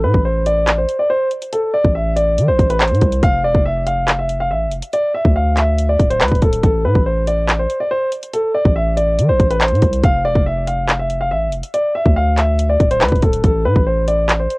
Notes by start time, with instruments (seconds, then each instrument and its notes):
0.04 808-style bass A2, grand piano B4
0.14 808-style bass A1, kick
0.25 grand piano C5
0.46 grand piano D5, closed hi-hat
0.67 clap, closed hi-hat
0.78 grand piano C5
0.89 closed hi-hat
0.99 grand piano D5
1.10 grand piano C5
1.31 closed hi-hat
1.42 closed hi-hat
1.53 grand piano A4, closed hi-hat
1.74 grand piano D5
1.85 808-style bass A1, kick
1.95 grand piano E5
2.16 grand piano D5, closed hi-hat
2.38 808-style bass E3, closed hi-hat
2.48 808-style bass A1, grand piano C5
2.59 808-style bass A1, kick, closed hi-hat
2.70 grand piano B4, closed hi-hat
2.80 grand piano C5, clap, closed hi-hat
2.87 808-style bass A2, closed hi-hat
2.94 closed hi-hat
3.01 808-style bass C2, kick, closed hi-hat
3.12 closed hi-hat
3.23 808-style bass F1, grand piano F5, kick, closed hi-hat
3.44 808-style bass E1, grand piano D5
3.55 808-style bass F1, kick
3.66 grand piano E5
3.87 grand piano F5, closed hi-hat
4.08 clap, closed hi-hat
4.19 grand piano E5
4.29 closed hi-hat
4.40 grand piano F5
4.50 808-style bass A1, grand piano E5
4.67 808-style bass F1
4.72 closed hi-hat
4.82 closed hi-hat
4.93 grand piano D5, closed hi-hat
5.14 grand piano E5
5.25 808-style bass D2, kick
5.36 grand piano F5
5.57 grand piano E5, clap, closed hi-hat
5.78 closed hi-hat
5.89 grand piano D5
5.99 808-style bass D1, kick, closed hi-hat
6.10 grand piano C5, closed hi-hat
6.21 808-style bass D2, grand piano B4, clap, closed hi-hat
6.28 808-style bass D1, kick, closed hi-hat
6.35 closed hi-hat
6.42 808-style bass D1, grand piano A4, kick, closed hi-hat
6.53 closed hi-hat
6.63 808-style bass A1, grand piano A4, kick, closed hi-hat
6.85 808-style bass A2, grand piano B4
6.95 808-style bass A1, kick
7.06 grand piano C5
7.27 grand piano D5, closed hi-hat
7.49 clap, closed hi-hat
7.59 grand piano C5
7.70 closed hi-hat
7.80 grand piano D5
7.91 grand piano C5
8.12 closed hi-hat
8.23 closed hi-hat
8.33 grand piano A4, closed hi-hat
8.54 grand piano D5
8.65 808-style bass A1, kick
8.76 grand piano E5
8.97 grand piano D5, closed hi-hat
9.19 808-style bass E3, closed hi-hat
9.29 808-style bass A1, grand piano C5
9.40 808-style bass A1, kick, closed hi-hat
9.51 grand piano B4, closed hi-hat
9.61 grand piano C5, clap, closed hi-hat
9.68 808-style bass A2, closed hi-hat
9.75 closed hi-hat
9.82 808-style bass C2, kick, closed hi-hat
9.93 closed hi-hat
10.04 808-style bass F1, grand piano F5, kick, closed hi-hat
10.25 808-style bass E1, grand piano D5
10.35 808-style bass F1, kick
10.46 grand piano E5
10.67 grand piano F5, closed hi-hat
10.89 clap, closed hi-hat
10.99 grand piano E5
11.10 closed hi-hat
11.21 grand piano F5
11.31 808-style bass A1, grand piano E5
11.47 808-style bass F1
11.52 closed hi-hat
11.63 closed hi-hat
11.74 grand piano D5, closed hi-hat
11.95 grand piano E5
12.06 808-style bass D2, kick
12.16 grand piano F5
12.38 grand piano E5, clap, closed hi-hat
12.59 closed hi-hat
12.70 grand piano D5
12.80 808-style bass D1, kick, closed hi-hat
12.91 grand piano C5, closed hi-hat
13.01 808-style bass D2, grand piano B4, clap, closed hi-hat
13.08 808-style bass D1, kick, closed hi-hat
13.16 closed hi-hat
13.22 808-style bass D1, grand piano A4, kick, closed hi-hat
13.33 closed hi-hat
13.44 808-style bass A1, grand piano A4, kick, closed hi-hat
13.65 808-style bass A2, grand piano B4
13.76 808-style bass A1, kick
13.87 grand piano C5
14.08 grand piano D5, closed hi-hat
14.29 clap, closed hi-hat
14.40 grand piano C5
14.50 closed hi-hat